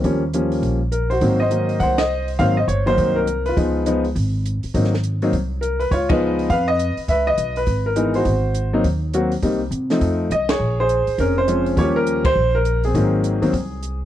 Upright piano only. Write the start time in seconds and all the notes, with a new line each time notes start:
0.04 F3 G3 A#3 C#4
0.34 F3 G3 A#3 C#4
0.92 A#4
1.10 F#4 C5
1.21 D#3 F#3 A#3 C4
1.40 C5 D#5
1.50 D#3 F#3 A#3 D#4
1.80 C5 F#5
1.98 D#5
2.39 D#3 F#3 A#3 C4 C5 F5
2.57 D#5
2.68 C#5
2.86 D#3 F#3 A#3 D#4 C5
3.16 A#4
3.46 F4 B4
3.57 F3 G#3 B3 D#4
3.86 F3 G#3 B3 D#4
4.74 F#3 A#3 C4 D#4
5.22 F#3 A#3 C4 D#4
5.61 A#4
5.80 B4
5.91 F4 C#5
6.09 F3 G#3 B3 D#4 B4 D#5
6.50 B4 F5
6.68 D#5
7.09 B4 E5
7.27 D#5
7.57 B4
7.86 A#4
7.96 E3 G#3 B3 D#4
8.15 F#4 C5
8.73 F#3 A#3 C4 D#4
9.14 F#3 A#3 C4 F#4
9.43 G3 A#3 C4 D#4
9.90 F3 A3 C4 D#4
10.32 D#5
10.50 G#4 C#5
10.80 G#4 C5
11.20 C#4 A#4
11.38 C5
11.47 F3 G#3 C4 C#4
11.77 F3 G3 A#3 C#4 G4 C#5
11.96 A#4
12.25 C5
12.55 A#4
12.85 C4 G#4
12.95 D#3 F#3 A#3 C4
13.42 D#3 F#3 A#3 C4